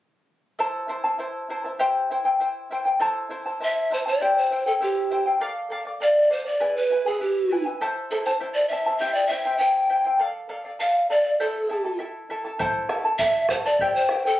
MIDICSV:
0, 0, Header, 1, 4, 480
1, 0, Start_track
1, 0, Key_signature, 0, "minor"
1, 0, Tempo, 600000
1, 474, Time_signature, 2, 2, 24, 8
1, 11519, End_track
2, 0, Start_track
2, 0, Title_t, "Pan flute"
2, 0, Program_c, 0, 75
2, 2910, Note_on_c, 0, 76, 94
2, 3123, Note_off_c, 0, 76, 0
2, 3150, Note_on_c, 0, 72, 75
2, 3198, Note_off_c, 0, 72, 0
2, 3265, Note_on_c, 0, 74, 74
2, 3502, Note_on_c, 0, 72, 81
2, 3514, Note_off_c, 0, 74, 0
2, 3731, Note_off_c, 0, 72, 0
2, 3736, Note_on_c, 0, 69, 66
2, 3784, Note_off_c, 0, 69, 0
2, 3861, Note_on_c, 0, 67, 66
2, 4191, Note_off_c, 0, 67, 0
2, 4818, Note_on_c, 0, 74, 90
2, 5056, Note_on_c, 0, 72, 87
2, 5068, Note_off_c, 0, 74, 0
2, 5167, Note_off_c, 0, 72, 0
2, 5172, Note_on_c, 0, 74, 80
2, 5414, Note_on_c, 0, 71, 80
2, 5426, Note_off_c, 0, 74, 0
2, 5651, Note_on_c, 0, 68, 74
2, 5663, Note_off_c, 0, 71, 0
2, 5771, Note_off_c, 0, 68, 0
2, 5777, Note_on_c, 0, 67, 70
2, 6109, Note_off_c, 0, 67, 0
2, 6488, Note_on_c, 0, 69, 61
2, 6536, Note_off_c, 0, 69, 0
2, 6603, Note_on_c, 0, 72, 63
2, 6658, Note_off_c, 0, 72, 0
2, 6835, Note_on_c, 0, 74, 78
2, 6946, Note_off_c, 0, 74, 0
2, 6950, Note_on_c, 0, 76, 70
2, 7183, Note_off_c, 0, 76, 0
2, 7187, Note_on_c, 0, 76, 78
2, 7317, Note_on_c, 0, 74, 79
2, 7329, Note_off_c, 0, 76, 0
2, 7413, Note_off_c, 0, 74, 0
2, 7418, Note_on_c, 0, 76, 78
2, 7665, Note_on_c, 0, 79, 82
2, 7677, Note_off_c, 0, 76, 0
2, 8037, Note_off_c, 0, 79, 0
2, 8644, Note_on_c, 0, 77, 89
2, 8869, Note_off_c, 0, 77, 0
2, 8883, Note_on_c, 0, 74, 83
2, 9108, Note_off_c, 0, 74, 0
2, 9126, Note_on_c, 0, 69, 69
2, 9573, Note_off_c, 0, 69, 0
2, 10549, Note_on_c, 0, 76, 93
2, 10776, Note_off_c, 0, 76, 0
2, 10800, Note_on_c, 0, 72, 85
2, 10848, Note_off_c, 0, 72, 0
2, 10925, Note_on_c, 0, 74, 72
2, 11144, Note_off_c, 0, 74, 0
2, 11166, Note_on_c, 0, 72, 78
2, 11383, Note_off_c, 0, 72, 0
2, 11409, Note_on_c, 0, 69, 77
2, 11513, Note_off_c, 0, 69, 0
2, 11519, End_track
3, 0, Start_track
3, 0, Title_t, "Charango"
3, 0, Program_c, 1, 24
3, 470, Note_on_c, 1, 69, 68
3, 471, Note_on_c, 1, 76, 62
3, 475, Note_on_c, 1, 64, 71
3, 479, Note_on_c, 1, 72, 69
3, 481, Note_on_c, 1, 81, 75
3, 696, Note_off_c, 1, 76, 0
3, 703, Note_off_c, 1, 64, 0
3, 705, Note_off_c, 1, 72, 0
3, 706, Note_on_c, 1, 76, 44
3, 710, Note_off_c, 1, 81, 0
3, 713, Note_off_c, 1, 69, 0
3, 713, Note_on_c, 1, 64, 51
3, 715, Note_on_c, 1, 72, 58
3, 719, Note_on_c, 1, 81, 57
3, 821, Note_off_c, 1, 81, 0
3, 828, Note_off_c, 1, 72, 0
3, 830, Note_on_c, 1, 81, 47
3, 831, Note_off_c, 1, 76, 0
3, 835, Note_off_c, 1, 64, 0
3, 837, Note_on_c, 1, 72, 44
3, 845, Note_on_c, 1, 64, 36
3, 942, Note_off_c, 1, 64, 0
3, 947, Note_on_c, 1, 76, 47
3, 948, Note_off_c, 1, 72, 0
3, 950, Note_off_c, 1, 81, 0
3, 951, Note_on_c, 1, 64, 51
3, 958, Note_on_c, 1, 72, 54
3, 959, Note_on_c, 1, 81, 54
3, 1187, Note_off_c, 1, 76, 0
3, 1190, Note_off_c, 1, 64, 0
3, 1195, Note_off_c, 1, 72, 0
3, 1196, Note_on_c, 1, 76, 47
3, 1199, Note_off_c, 1, 81, 0
3, 1200, Note_on_c, 1, 64, 51
3, 1204, Note_on_c, 1, 72, 60
3, 1209, Note_on_c, 1, 81, 58
3, 1306, Note_off_c, 1, 81, 0
3, 1311, Note_off_c, 1, 72, 0
3, 1315, Note_on_c, 1, 81, 38
3, 1316, Note_off_c, 1, 64, 0
3, 1318, Note_off_c, 1, 76, 0
3, 1320, Note_on_c, 1, 72, 38
3, 1326, Note_on_c, 1, 64, 40
3, 1431, Note_off_c, 1, 64, 0
3, 1431, Note_off_c, 1, 72, 0
3, 1435, Note_on_c, 1, 67, 66
3, 1437, Note_on_c, 1, 76, 78
3, 1438, Note_off_c, 1, 81, 0
3, 1441, Note_on_c, 1, 64, 68
3, 1441, Note_on_c, 1, 72, 79
3, 1444, Note_on_c, 1, 79, 75
3, 1674, Note_off_c, 1, 76, 0
3, 1679, Note_off_c, 1, 67, 0
3, 1681, Note_off_c, 1, 64, 0
3, 1681, Note_off_c, 1, 72, 0
3, 1683, Note_off_c, 1, 79, 0
3, 1684, Note_on_c, 1, 76, 50
3, 1690, Note_on_c, 1, 64, 51
3, 1692, Note_on_c, 1, 72, 58
3, 1694, Note_on_c, 1, 79, 57
3, 1790, Note_off_c, 1, 79, 0
3, 1795, Note_off_c, 1, 72, 0
3, 1799, Note_off_c, 1, 64, 0
3, 1799, Note_on_c, 1, 79, 50
3, 1803, Note_off_c, 1, 76, 0
3, 1805, Note_on_c, 1, 72, 41
3, 1808, Note_on_c, 1, 64, 40
3, 1914, Note_off_c, 1, 64, 0
3, 1917, Note_off_c, 1, 72, 0
3, 1920, Note_on_c, 1, 76, 57
3, 1921, Note_off_c, 1, 79, 0
3, 1924, Note_on_c, 1, 64, 46
3, 1927, Note_on_c, 1, 72, 60
3, 1932, Note_on_c, 1, 79, 55
3, 2156, Note_off_c, 1, 76, 0
3, 2160, Note_off_c, 1, 64, 0
3, 2165, Note_off_c, 1, 72, 0
3, 2165, Note_on_c, 1, 76, 51
3, 2168, Note_off_c, 1, 79, 0
3, 2170, Note_on_c, 1, 64, 59
3, 2176, Note_on_c, 1, 72, 57
3, 2178, Note_on_c, 1, 79, 62
3, 2270, Note_off_c, 1, 79, 0
3, 2280, Note_on_c, 1, 79, 42
3, 2281, Note_off_c, 1, 72, 0
3, 2283, Note_off_c, 1, 64, 0
3, 2285, Note_off_c, 1, 76, 0
3, 2291, Note_on_c, 1, 72, 39
3, 2292, Note_on_c, 1, 64, 35
3, 2393, Note_off_c, 1, 64, 0
3, 2395, Note_off_c, 1, 79, 0
3, 2396, Note_off_c, 1, 72, 0
3, 2399, Note_on_c, 1, 69, 77
3, 2400, Note_on_c, 1, 76, 70
3, 2403, Note_on_c, 1, 64, 87
3, 2406, Note_on_c, 1, 72, 81
3, 2411, Note_on_c, 1, 81, 76
3, 2630, Note_off_c, 1, 76, 0
3, 2635, Note_off_c, 1, 64, 0
3, 2636, Note_off_c, 1, 72, 0
3, 2640, Note_on_c, 1, 76, 53
3, 2641, Note_off_c, 1, 81, 0
3, 2642, Note_off_c, 1, 69, 0
3, 2644, Note_on_c, 1, 64, 62
3, 2646, Note_on_c, 1, 72, 55
3, 2650, Note_on_c, 1, 81, 59
3, 2756, Note_off_c, 1, 81, 0
3, 2762, Note_off_c, 1, 72, 0
3, 2763, Note_off_c, 1, 76, 0
3, 2765, Note_off_c, 1, 64, 0
3, 2766, Note_on_c, 1, 81, 46
3, 2772, Note_on_c, 1, 72, 41
3, 2775, Note_on_c, 1, 64, 36
3, 2880, Note_off_c, 1, 64, 0
3, 2882, Note_off_c, 1, 72, 0
3, 2884, Note_on_c, 1, 76, 55
3, 2886, Note_off_c, 1, 81, 0
3, 2890, Note_on_c, 1, 64, 53
3, 2892, Note_on_c, 1, 72, 54
3, 2897, Note_on_c, 1, 81, 53
3, 3114, Note_off_c, 1, 76, 0
3, 3122, Note_off_c, 1, 64, 0
3, 3123, Note_off_c, 1, 72, 0
3, 3124, Note_on_c, 1, 76, 48
3, 3128, Note_off_c, 1, 81, 0
3, 3132, Note_on_c, 1, 64, 54
3, 3133, Note_on_c, 1, 72, 55
3, 3138, Note_on_c, 1, 81, 55
3, 3236, Note_off_c, 1, 81, 0
3, 3244, Note_off_c, 1, 72, 0
3, 3246, Note_off_c, 1, 76, 0
3, 3246, Note_on_c, 1, 81, 44
3, 3250, Note_off_c, 1, 64, 0
3, 3254, Note_on_c, 1, 72, 40
3, 3260, Note_on_c, 1, 64, 35
3, 3363, Note_off_c, 1, 64, 0
3, 3366, Note_off_c, 1, 72, 0
3, 3367, Note_off_c, 1, 81, 0
3, 3369, Note_on_c, 1, 76, 69
3, 3372, Note_on_c, 1, 64, 70
3, 3372, Note_on_c, 1, 67, 63
3, 3375, Note_on_c, 1, 72, 69
3, 3378, Note_on_c, 1, 79, 69
3, 3602, Note_off_c, 1, 76, 0
3, 3606, Note_off_c, 1, 64, 0
3, 3608, Note_off_c, 1, 72, 0
3, 3610, Note_off_c, 1, 67, 0
3, 3612, Note_on_c, 1, 76, 47
3, 3613, Note_off_c, 1, 79, 0
3, 3615, Note_on_c, 1, 64, 59
3, 3618, Note_on_c, 1, 72, 56
3, 3623, Note_on_c, 1, 79, 61
3, 3719, Note_off_c, 1, 79, 0
3, 3725, Note_off_c, 1, 72, 0
3, 3728, Note_on_c, 1, 79, 46
3, 3730, Note_off_c, 1, 76, 0
3, 3732, Note_off_c, 1, 64, 0
3, 3735, Note_on_c, 1, 72, 41
3, 3740, Note_on_c, 1, 64, 39
3, 3843, Note_off_c, 1, 64, 0
3, 3843, Note_off_c, 1, 72, 0
3, 3845, Note_on_c, 1, 76, 58
3, 3848, Note_off_c, 1, 79, 0
3, 3852, Note_on_c, 1, 64, 57
3, 3853, Note_on_c, 1, 72, 56
3, 3858, Note_on_c, 1, 79, 57
3, 4075, Note_off_c, 1, 76, 0
3, 4082, Note_off_c, 1, 64, 0
3, 4082, Note_off_c, 1, 72, 0
3, 4085, Note_on_c, 1, 76, 53
3, 4086, Note_off_c, 1, 79, 0
3, 4092, Note_on_c, 1, 64, 51
3, 4092, Note_on_c, 1, 72, 57
3, 4095, Note_on_c, 1, 79, 57
3, 4197, Note_off_c, 1, 79, 0
3, 4206, Note_off_c, 1, 72, 0
3, 4206, Note_on_c, 1, 79, 45
3, 4207, Note_off_c, 1, 76, 0
3, 4210, Note_off_c, 1, 64, 0
3, 4216, Note_on_c, 1, 72, 41
3, 4219, Note_on_c, 1, 64, 39
3, 4323, Note_off_c, 1, 79, 0
3, 4327, Note_off_c, 1, 64, 0
3, 4327, Note_on_c, 1, 69, 82
3, 4330, Note_on_c, 1, 74, 77
3, 4333, Note_off_c, 1, 72, 0
3, 4333, Note_on_c, 1, 77, 98
3, 4551, Note_off_c, 1, 69, 0
3, 4561, Note_on_c, 1, 69, 55
3, 4562, Note_off_c, 1, 74, 0
3, 4566, Note_off_c, 1, 77, 0
3, 4572, Note_on_c, 1, 74, 62
3, 4576, Note_on_c, 1, 77, 69
3, 4672, Note_off_c, 1, 77, 0
3, 4682, Note_on_c, 1, 77, 43
3, 4683, Note_off_c, 1, 74, 0
3, 4685, Note_off_c, 1, 69, 0
3, 4692, Note_on_c, 1, 74, 44
3, 4799, Note_off_c, 1, 74, 0
3, 4802, Note_on_c, 1, 69, 47
3, 4806, Note_off_c, 1, 77, 0
3, 4809, Note_on_c, 1, 74, 51
3, 4815, Note_on_c, 1, 77, 53
3, 5024, Note_off_c, 1, 69, 0
3, 5034, Note_on_c, 1, 69, 49
3, 5035, Note_off_c, 1, 74, 0
3, 5038, Note_off_c, 1, 77, 0
3, 5044, Note_on_c, 1, 74, 56
3, 5047, Note_on_c, 1, 77, 60
3, 5153, Note_off_c, 1, 77, 0
3, 5162, Note_off_c, 1, 69, 0
3, 5162, Note_on_c, 1, 77, 40
3, 5164, Note_off_c, 1, 74, 0
3, 5174, Note_on_c, 1, 74, 36
3, 5278, Note_off_c, 1, 77, 0
3, 5281, Note_on_c, 1, 68, 65
3, 5283, Note_off_c, 1, 74, 0
3, 5284, Note_on_c, 1, 76, 66
3, 5286, Note_on_c, 1, 64, 69
3, 5288, Note_on_c, 1, 71, 73
3, 5290, Note_on_c, 1, 80, 79
3, 5515, Note_off_c, 1, 76, 0
3, 5520, Note_off_c, 1, 64, 0
3, 5523, Note_off_c, 1, 71, 0
3, 5525, Note_on_c, 1, 76, 52
3, 5526, Note_off_c, 1, 68, 0
3, 5530, Note_off_c, 1, 80, 0
3, 5530, Note_on_c, 1, 64, 53
3, 5532, Note_on_c, 1, 71, 53
3, 5538, Note_on_c, 1, 80, 57
3, 5639, Note_off_c, 1, 80, 0
3, 5647, Note_off_c, 1, 71, 0
3, 5648, Note_off_c, 1, 76, 0
3, 5648, Note_on_c, 1, 80, 46
3, 5650, Note_off_c, 1, 64, 0
3, 5657, Note_on_c, 1, 71, 44
3, 5661, Note_on_c, 1, 64, 36
3, 5755, Note_off_c, 1, 64, 0
3, 5758, Note_off_c, 1, 71, 0
3, 5760, Note_off_c, 1, 80, 0
3, 5763, Note_on_c, 1, 76, 49
3, 5764, Note_on_c, 1, 64, 51
3, 5767, Note_on_c, 1, 71, 54
3, 5997, Note_off_c, 1, 76, 0
3, 5998, Note_off_c, 1, 64, 0
3, 6006, Note_off_c, 1, 71, 0
3, 6006, Note_on_c, 1, 76, 45
3, 6008, Note_on_c, 1, 64, 48
3, 6016, Note_on_c, 1, 71, 55
3, 6019, Note_on_c, 1, 80, 57
3, 6118, Note_off_c, 1, 80, 0
3, 6124, Note_off_c, 1, 71, 0
3, 6127, Note_on_c, 1, 80, 39
3, 6129, Note_off_c, 1, 76, 0
3, 6130, Note_off_c, 1, 64, 0
3, 6133, Note_on_c, 1, 71, 37
3, 6141, Note_on_c, 1, 64, 31
3, 6242, Note_off_c, 1, 64, 0
3, 6245, Note_off_c, 1, 71, 0
3, 6248, Note_on_c, 1, 69, 83
3, 6249, Note_off_c, 1, 80, 0
3, 6251, Note_on_c, 1, 76, 83
3, 6252, Note_on_c, 1, 64, 78
3, 6253, Note_on_c, 1, 72, 85
3, 6255, Note_on_c, 1, 81, 97
3, 6480, Note_off_c, 1, 76, 0
3, 6484, Note_off_c, 1, 64, 0
3, 6488, Note_off_c, 1, 72, 0
3, 6488, Note_off_c, 1, 81, 0
3, 6489, Note_off_c, 1, 69, 0
3, 6489, Note_on_c, 1, 76, 50
3, 6494, Note_on_c, 1, 64, 57
3, 6498, Note_on_c, 1, 72, 52
3, 6498, Note_on_c, 1, 81, 60
3, 6602, Note_off_c, 1, 81, 0
3, 6610, Note_off_c, 1, 72, 0
3, 6610, Note_off_c, 1, 76, 0
3, 6612, Note_off_c, 1, 64, 0
3, 6612, Note_on_c, 1, 81, 45
3, 6619, Note_on_c, 1, 72, 42
3, 6623, Note_on_c, 1, 64, 39
3, 6714, Note_off_c, 1, 64, 0
3, 6720, Note_off_c, 1, 72, 0
3, 6723, Note_off_c, 1, 81, 0
3, 6724, Note_on_c, 1, 64, 58
3, 6724, Note_on_c, 1, 76, 49
3, 6729, Note_on_c, 1, 72, 53
3, 6733, Note_on_c, 1, 81, 56
3, 6959, Note_off_c, 1, 76, 0
3, 6961, Note_off_c, 1, 64, 0
3, 6968, Note_off_c, 1, 72, 0
3, 6968, Note_on_c, 1, 76, 51
3, 6971, Note_on_c, 1, 64, 49
3, 6972, Note_off_c, 1, 81, 0
3, 6978, Note_on_c, 1, 72, 52
3, 6981, Note_on_c, 1, 81, 60
3, 7079, Note_off_c, 1, 81, 0
3, 7086, Note_off_c, 1, 72, 0
3, 7089, Note_off_c, 1, 76, 0
3, 7089, Note_on_c, 1, 81, 44
3, 7091, Note_off_c, 1, 64, 0
3, 7096, Note_on_c, 1, 72, 43
3, 7100, Note_on_c, 1, 64, 32
3, 7199, Note_off_c, 1, 64, 0
3, 7202, Note_off_c, 1, 72, 0
3, 7203, Note_on_c, 1, 67, 61
3, 7208, Note_on_c, 1, 64, 76
3, 7209, Note_off_c, 1, 81, 0
3, 7209, Note_on_c, 1, 76, 69
3, 7212, Note_on_c, 1, 72, 76
3, 7212, Note_on_c, 1, 79, 71
3, 7430, Note_off_c, 1, 76, 0
3, 7435, Note_off_c, 1, 64, 0
3, 7440, Note_off_c, 1, 72, 0
3, 7440, Note_on_c, 1, 76, 50
3, 7441, Note_off_c, 1, 79, 0
3, 7444, Note_on_c, 1, 64, 60
3, 7447, Note_off_c, 1, 67, 0
3, 7450, Note_on_c, 1, 72, 58
3, 7451, Note_on_c, 1, 79, 60
3, 7554, Note_off_c, 1, 79, 0
3, 7559, Note_off_c, 1, 72, 0
3, 7563, Note_on_c, 1, 79, 43
3, 7565, Note_off_c, 1, 64, 0
3, 7565, Note_off_c, 1, 76, 0
3, 7569, Note_on_c, 1, 72, 40
3, 7574, Note_on_c, 1, 64, 38
3, 7672, Note_off_c, 1, 64, 0
3, 7677, Note_off_c, 1, 72, 0
3, 7678, Note_off_c, 1, 79, 0
3, 7681, Note_on_c, 1, 64, 55
3, 7681, Note_on_c, 1, 76, 56
3, 7687, Note_on_c, 1, 72, 62
3, 7687, Note_on_c, 1, 79, 55
3, 7908, Note_off_c, 1, 76, 0
3, 7910, Note_off_c, 1, 64, 0
3, 7911, Note_off_c, 1, 72, 0
3, 7913, Note_off_c, 1, 79, 0
3, 7917, Note_on_c, 1, 76, 50
3, 7920, Note_on_c, 1, 64, 51
3, 7920, Note_on_c, 1, 72, 56
3, 7923, Note_on_c, 1, 79, 63
3, 8028, Note_off_c, 1, 79, 0
3, 8036, Note_off_c, 1, 72, 0
3, 8037, Note_on_c, 1, 79, 43
3, 8042, Note_off_c, 1, 64, 0
3, 8043, Note_off_c, 1, 76, 0
3, 8046, Note_on_c, 1, 72, 39
3, 8051, Note_on_c, 1, 64, 36
3, 8151, Note_off_c, 1, 64, 0
3, 8154, Note_on_c, 1, 69, 75
3, 8156, Note_off_c, 1, 72, 0
3, 8159, Note_on_c, 1, 74, 81
3, 8163, Note_off_c, 1, 79, 0
3, 8165, Note_on_c, 1, 77, 91
3, 8382, Note_off_c, 1, 69, 0
3, 8387, Note_off_c, 1, 74, 0
3, 8391, Note_off_c, 1, 77, 0
3, 8392, Note_on_c, 1, 69, 65
3, 8397, Note_on_c, 1, 74, 66
3, 8400, Note_on_c, 1, 77, 61
3, 8508, Note_off_c, 1, 77, 0
3, 8517, Note_on_c, 1, 77, 46
3, 8518, Note_off_c, 1, 74, 0
3, 8520, Note_off_c, 1, 69, 0
3, 8528, Note_on_c, 1, 74, 39
3, 8634, Note_on_c, 1, 69, 55
3, 8635, Note_off_c, 1, 74, 0
3, 8640, Note_off_c, 1, 77, 0
3, 8645, Note_on_c, 1, 74, 57
3, 8649, Note_on_c, 1, 77, 52
3, 8870, Note_off_c, 1, 69, 0
3, 8876, Note_off_c, 1, 74, 0
3, 8878, Note_off_c, 1, 77, 0
3, 8879, Note_on_c, 1, 69, 53
3, 8886, Note_on_c, 1, 74, 54
3, 8887, Note_on_c, 1, 77, 53
3, 8987, Note_off_c, 1, 77, 0
3, 8997, Note_on_c, 1, 77, 44
3, 8998, Note_off_c, 1, 74, 0
3, 9003, Note_off_c, 1, 69, 0
3, 9007, Note_on_c, 1, 74, 37
3, 9118, Note_off_c, 1, 77, 0
3, 9120, Note_on_c, 1, 72, 68
3, 9121, Note_off_c, 1, 74, 0
3, 9121, Note_on_c, 1, 76, 76
3, 9123, Note_on_c, 1, 64, 69
3, 9124, Note_on_c, 1, 69, 83
3, 9128, Note_on_c, 1, 81, 71
3, 9346, Note_off_c, 1, 76, 0
3, 9352, Note_off_c, 1, 64, 0
3, 9355, Note_off_c, 1, 69, 0
3, 9356, Note_on_c, 1, 76, 52
3, 9359, Note_off_c, 1, 81, 0
3, 9361, Note_on_c, 1, 64, 50
3, 9362, Note_off_c, 1, 72, 0
3, 9365, Note_on_c, 1, 69, 56
3, 9368, Note_on_c, 1, 81, 60
3, 9465, Note_off_c, 1, 81, 0
3, 9473, Note_off_c, 1, 69, 0
3, 9475, Note_on_c, 1, 81, 44
3, 9476, Note_off_c, 1, 64, 0
3, 9480, Note_off_c, 1, 76, 0
3, 9482, Note_on_c, 1, 69, 43
3, 9486, Note_on_c, 1, 64, 36
3, 9586, Note_off_c, 1, 64, 0
3, 9588, Note_off_c, 1, 69, 0
3, 9590, Note_on_c, 1, 76, 55
3, 9592, Note_off_c, 1, 81, 0
3, 9596, Note_on_c, 1, 64, 49
3, 9598, Note_on_c, 1, 69, 49
3, 9602, Note_on_c, 1, 81, 56
3, 9830, Note_off_c, 1, 76, 0
3, 9834, Note_off_c, 1, 64, 0
3, 9835, Note_off_c, 1, 69, 0
3, 9839, Note_off_c, 1, 81, 0
3, 9840, Note_on_c, 1, 76, 58
3, 9844, Note_on_c, 1, 64, 59
3, 9845, Note_on_c, 1, 69, 65
3, 9849, Note_on_c, 1, 81, 56
3, 9948, Note_off_c, 1, 81, 0
3, 9955, Note_off_c, 1, 69, 0
3, 9958, Note_on_c, 1, 81, 47
3, 9961, Note_off_c, 1, 64, 0
3, 9961, Note_off_c, 1, 76, 0
3, 9964, Note_on_c, 1, 69, 37
3, 9971, Note_on_c, 1, 64, 40
3, 10069, Note_off_c, 1, 64, 0
3, 10070, Note_off_c, 1, 69, 0
3, 10073, Note_off_c, 1, 81, 0
3, 10075, Note_on_c, 1, 72, 74
3, 10075, Note_on_c, 1, 76, 75
3, 10078, Note_on_c, 1, 64, 77
3, 10080, Note_on_c, 1, 69, 95
3, 10082, Note_on_c, 1, 81, 84
3, 10306, Note_off_c, 1, 76, 0
3, 10308, Note_off_c, 1, 64, 0
3, 10312, Note_off_c, 1, 69, 0
3, 10314, Note_off_c, 1, 81, 0
3, 10315, Note_on_c, 1, 76, 61
3, 10318, Note_off_c, 1, 72, 0
3, 10318, Note_on_c, 1, 64, 62
3, 10321, Note_on_c, 1, 69, 64
3, 10324, Note_on_c, 1, 81, 59
3, 10427, Note_off_c, 1, 81, 0
3, 10432, Note_off_c, 1, 69, 0
3, 10434, Note_off_c, 1, 64, 0
3, 10437, Note_on_c, 1, 81, 46
3, 10438, Note_off_c, 1, 76, 0
3, 10441, Note_on_c, 1, 69, 44
3, 10444, Note_on_c, 1, 64, 39
3, 10553, Note_off_c, 1, 64, 0
3, 10556, Note_off_c, 1, 69, 0
3, 10558, Note_off_c, 1, 81, 0
3, 10561, Note_on_c, 1, 76, 49
3, 10563, Note_on_c, 1, 64, 52
3, 10566, Note_on_c, 1, 69, 60
3, 10571, Note_on_c, 1, 81, 62
3, 10790, Note_off_c, 1, 76, 0
3, 10797, Note_off_c, 1, 64, 0
3, 10799, Note_off_c, 1, 69, 0
3, 10800, Note_on_c, 1, 76, 55
3, 10804, Note_off_c, 1, 81, 0
3, 10807, Note_on_c, 1, 64, 52
3, 10808, Note_on_c, 1, 69, 53
3, 10813, Note_on_c, 1, 81, 55
3, 10914, Note_off_c, 1, 81, 0
3, 10919, Note_off_c, 1, 76, 0
3, 10920, Note_off_c, 1, 69, 0
3, 10922, Note_off_c, 1, 64, 0
3, 10924, Note_on_c, 1, 81, 45
3, 10929, Note_on_c, 1, 69, 40
3, 10935, Note_on_c, 1, 64, 37
3, 11040, Note_off_c, 1, 81, 0
3, 11043, Note_off_c, 1, 69, 0
3, 11046, Note_off_c, 1, 64, 0
3, 11046, Note_on_c, 1, 67, 74
3, 11052, Note_on_c, 1, 76, 66
3, 11054, Note_on_c, 1, 64, 74
3, 11056, Note_on_c, 1, 72, 68
3, 11056, Note_on_c, 1, 79, 90
3, 11272, Note_off_c, 1, 76, 0
3, 11276, Note_off_c, 1, 64, 0
3, 11279, Note_off_c, 1, 72, 0
3, 11280, Note_off_c, 1, 67, 0
3, 11281, Note_on_c, 1, 76, 56
3, 11282, Note_off_c, 1, 79, 0
3, 11285, Note_on_c, 1, 64, 54
3, 11289, Note_on_c, 1, 72, 57
3, 11292, Note_on_c, 1, 79, 59
3, 11392, Note_off_c, 1, 79, 0
3, 11398, Note_off_c, 1, 76, 0
3, 11399, Note_off_c, 1, 72, 0
3, 11400, Note_off_c, 1, 64, 0
3, 11401, Note_on_c, 1, 79, 47
3, 11409, Note_on_c, 1, 72, 42
3, 11417, Note_on_c, 1, 64, 40
3, 11513, Note_off_c, 1, 64, 0
3, 11517, Note_off_c, 1, 72, 0
3, 11517, Note_off_c, 1, 79, 0
3, 11519, End_track
4, 0, Start_track
4, 0, Title_t, "Bombo"
4, 10079, Note_on_c, 9, 43, 59
4, 10159, Note_off_c, 9, 43, 0
4, 10315, Note_on_c, 9, 37, 47
4, 10395, Note_off_c, 9, 37, 0
4, 10552, Note_on_c, 9, 43, 60
4, 10632, Note_off_c, 9, 43, 0
4, 10790, Note_on_c, 9, 37, 54
4, 10790, Note_on_c, 9, 43, 55
4, 10870, Note_off_c, 9, 37, 0
4, 10870, Note_off_c, 9, 43, 0
4, 11034, Note_on_c, 9, 43, 57
4, 11114, Note_off_c, 9, 43, 0
4, 11271, Note_on_c, 9, 37, 51
4, 11351, Note_off_c, 9, 37, 0
4, 11519, End_track
0, 0, End_of_file